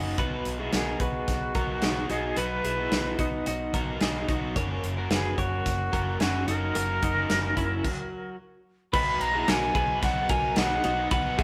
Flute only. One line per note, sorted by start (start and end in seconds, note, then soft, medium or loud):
0.73 1.02 G#4 medium
1.00 2.11 F#4 medium
2.10 2.39 G#4 medium
2.37 3.47 B4 medium
5.12 5.41 G#4 medium
5.39 6.20 F#4 loud
6.21 6.46 F#4 medium
6.48 8.35 A#4 loud
8.93 9.23 B5 loud
9.21 9.50 A#5 medium
9.49 10.02 G#5 loud
10.03 10.32 F#5 loud
10.30 10.58 G#5 medium
10.57 11.11 F#5 loud
11.12 11.43 F#5 loud